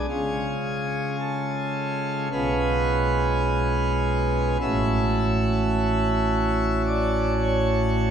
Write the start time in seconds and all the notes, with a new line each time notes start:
0.09 C#3 G#3 C#4 F4 G#4
1.19 A4
2.32 B1 B2 G#3 C#4 F4 B4
4.61 A1 A2 A3 C#4 F#4 E5
6.86 D5
7.42 C#5